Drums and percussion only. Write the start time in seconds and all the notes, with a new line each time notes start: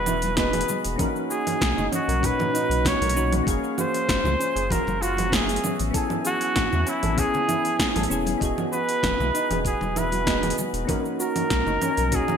0.06 open hi-hat, low conga, cabasa
0.22 open hi-hat, high conga, cabasa
0.37 kick, snare, open hi-hat, cabasa
0.53 open hi-hat, low conga, cabasa
0.61 open hi-hat
0.69 high conga, low conga, cabasa
0.84 open hi-hat, cabasa
0.99 kick, open hi-hat, low conga, cabasa
1.16 cabasa
1.31 cabasa
1.47 open hi-hat, low conga, cabasa
1.61 kick, snare, open hi-hat, cabasa
1.78 low conga, cabasa
1.93 open hi-hat, low conga, cabasa
2.09 open hi-hat, cabasa
2.23 kick, open hi-hat, cabasa
2.40 low conga, cabasa
2.55 open hi-hat, cabasa
2.71 open hi-hat, cabasa
2.85 kick, snare, open hi-hat, low conga, cabasa
3.02 open hi-hat, high conga, cabasa
3.09 open hi-hat
3.16 low conga, cabasa
3.32 open hi-hat, high conga, low conga, cabasa
3.47 kick, open hi-hat, cabasa
3.64 cabasa
3.78 low conga, cabasa
3.94 open hi-hat, cabasa
4.09 kick, snare, open hi-hat, cabasa
4.25 low conga, cabasa
4.41 open hi-hat, cabasa
4.56 open hi-hat, cabasa
4.71 kick, open hi-hat, low conga, cabasa
4.87 high conga, low conga, cabasa
5.03 open hi-hat, cabasa
5.17 open hi-hat, high conga, low conga, cabasa
5.32 kick, snare, open hi-hat, cabasa
5.49 open hi-hat, cabasa
5.56 open hi-hat
5.64 high conga, low conga, cabasa
5.80 open hi-hat, cabasa
5.94 kick, open hi-hat, cabasa
6.10 low conga, cabasa
6.25 open hi-hat, cabasa
6.41 open hi-hat, cabasa
6.56 kick, snare, open hi-hat, low conga, cabasa
6.72 low conga, cabasa
6.87 open hi-hat, cabasa
7.03 open hi-hat, low conga, cabasa
7.18 kick, open hi-hat, cabasa
7.34 low conga, cabasa
7.49 open hi-hat, low conga, cabasa
7.65 open hi-hat, cabasa
7.79 kick, snare, open hi-hat, cabasa
7.96 open hi-hat, high conga, low conga, cabasa
8.03 open hi-hat
8.10 low conga, cabasa
8.26 open hi-hat, high conga, cabasa
8.41 kick, open hi-hat, cabasa
8.58 low conga, cabasa
8.73 cabasa
8.89 open hi-hat, cabasa
9.03 kick, snare, open hi-hat, low conga, cabasa
9.20 low conga, cabasa
9.35 open hi-hat, cabasa
9.51 open hi-hat, low conga, cabasa
9.65 kick, open hi-hat, cabasa
9.81 high conga, low conga, cabasa
9.96 open hi-hat, low conga, cabasa
10.12 open hi-hat, high conga, cabasa
10.27 kick, snare, open hi-hat, cabasa
10.43 open hi-hat, low conga, cabasa
10.50 open hi-hat
10.58 high conga, low conga, cabasa
10.74 open hi-hat, cabasa
10.89 kick, open hi-hat, low conga, cabasa
11.05 cabasa
11.20 cabasa
11.36 open hi-hat, low conga, cabasa
11.50 kick, snare, open hi-hat, cabasa
11.67 low conga, cabasa
11.82 open hi-hat, low conga, cabasa
11.97 open hi-hat, cabasa
12.12 kick, open hi-hat, cabasa
12.28 low conga, cabasa